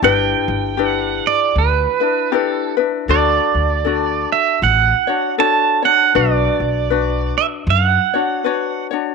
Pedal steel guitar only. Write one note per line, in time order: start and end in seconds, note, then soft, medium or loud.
0.04 0.86 G5 loud
0.86 1.29 F#5 loud
1.27 1.58 D5 medium
1.58 2.38 B4 medium
2.38 2.75 A4 medium
3.11 4.32 D5 medium
4.32 4.63 E5 medium
4.63 5.35 F#5 loud
5.40 5.85 A5 loud
5.85 6.16 F#5 medium
6.16 7.37 D5 loud
7.38 7.46 E5 medium
7.70 8.87 F#5 medium